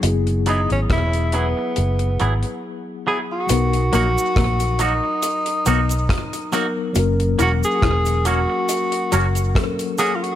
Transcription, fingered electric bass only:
X:1
M:4/4
L:1/16
Q:"Swing 16ths" 1/4=69
K:B
V:1 name="Fingered electric bass" clef=bass
F,,,3 G,,, E,,,3 z F,,,2 G,,, z4 z | B,,,2 A,,, z A,,,3 z3 B,,,2 z4 | F,,,2 E,,, z E,,,3 z3 F,,,2 z4 |]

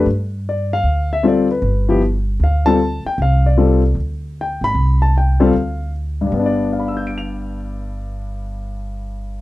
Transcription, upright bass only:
X:1
M:4/4
L:1/8
Q:"Swing" 1/4=153
K:Gmix
V:1 name="Upright bass" clef=bass
G,,4 D,,4 | G,,,4 D,,3 z | C,,4 D,,3 _A,,, | C,,4 D,,4 |
G,,,8- | G,,,8 |]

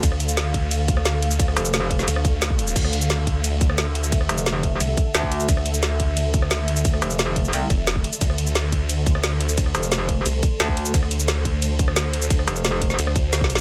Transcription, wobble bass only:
X:1
M:4/4
L:1/8
Q:1/4=176
K:Dm
V:1 name="Wobble bass" clef=bass
z8 | z F,,,3 z4 | z8 | z F,,,3 z2 D,,2 |
z8 | z F,,,3 C,, z3 | z8 | z F,,,3 z2 D,,2 |
z8 | z F,,,3 z4 |]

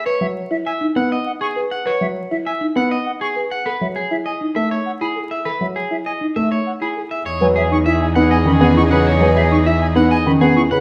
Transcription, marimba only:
X:1
M:3/4
L:1/16
Q:1/4=100
K:Alyd
V:1 name="Marimba"
B z2 E z D z4 B z | B z2 E z D z4 B z | A z2 E z D z3 E A z | A z2 E z D z3 E A z |
[K:E] z B z D E z D z C z E B | z B z D E z D z C z E B |]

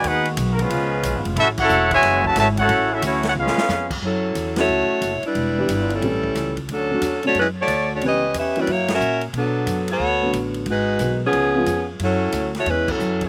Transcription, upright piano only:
X:1
M:4/4
L:1/8
Q:"Swing" 1/4=181
K:F#m
V:1 name="Upright piano"
z8 | z8 | z8 | z3 [F,A,CEA]3 z2 |
z [E,=G,B,D=G] z2 [E,G,A,CE]3 z | z [D,F,A,CF] z [D,F,A,CF] z4 | [E,=G,B,C=G] z2 [E,F,^A,CF] z4 | z4 z [D,F,A,B,F]3 |
z2 [^D,F,G,B,F] z2 [^E,G,B,C^E] z2 | z8 |]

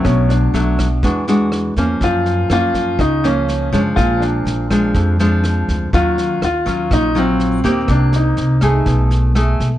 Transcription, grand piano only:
X:1
M:4/4
L:1/8
Q:1/4=122
K:Gblyd
V:1 name="Grand piano"
D =D4 z3 | F2 F2 E D2 D | F =D4 z3 | F2 F2 E C2 C |
=D E4 z3 |]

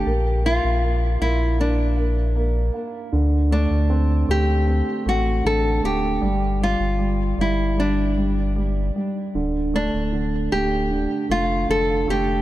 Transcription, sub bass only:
X:1
M:4/4
L:1/16
Q:1/4=78
K:Dm
V:1 name="Sub bass" clef=bass
B,,,3 B,,,3 B,,,8 z2 | D,,3 D,,3 D,,3 z A,,,2 A,,,2 D,,,2 | G,,,3 G,,,3 G,,,8 z2 | D,,,3 D,,,3 D,,,3 z F,,,2 F,,,2 F,,,2 |]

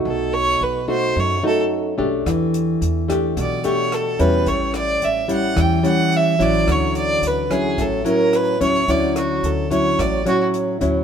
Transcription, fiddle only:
X:1
M:4/4
L:1/8
Q:1/4=109
K:D
V:1 name="Fiddle"
A c B =c ^c A z2 | z4 d c A B | c d e f g f e d | c d B ^G A _B =B c |
d F A c d F z2 |]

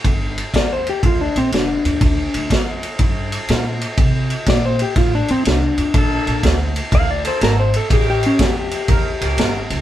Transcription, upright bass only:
X:1
M:4/4
L:1/8
Q:"Swing" 1/4=122
K:Dm
V:1 name="Upright bass" clef=bass
G,,,2 E,,2 D,, B,,, F,,, E,, | D,, D,, F,,2 G,,2 B,,2 | C,2 B,,2 A,, F,, C,, F,, | B,,, B,,, D,,2 D,,2 ^G,,,2 |
A,,,2 F,,2 E,, ^C,, G,,, C,, |]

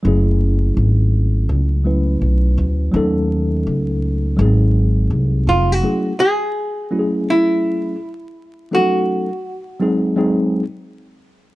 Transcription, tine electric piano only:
X:1
M:4/4
L:1/8
Q:"Swing 16ths" 1/4=83
K:F#m
V:1 name="Tine electric piano"
[F,A,CEG]4- [F,A,CEG] [F,A,CEB]3 | [F,A,C^DA]4 [F,G,B,^B,DG]4 | [F,A,CEG] z2 [F,A,CEFG]3 z2 | [^E,F,A,C^DA] z2 [F,G,^B,DG] [F,G,B,DG] z3 |]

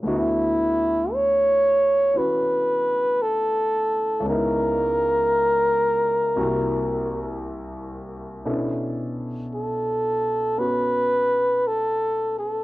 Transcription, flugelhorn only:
X:1
M:4/4
L:1/8
Q:"Swing" 1/4=57
K:D
V:1 name="Flugelhorn"
E2 c2 B2 A2 | _B6 z2 | z2 A2 B2 A A |]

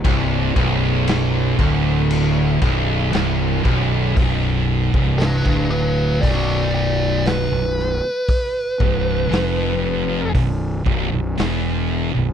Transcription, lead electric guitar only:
X:1
M:4/4
L:1/8
Q:1/4=58
K:Bphr
V:1 name="Lead electric guitar"
z8 | z2 [DB] [DB] [Fd] [Fd] B2- | B4 z4 |]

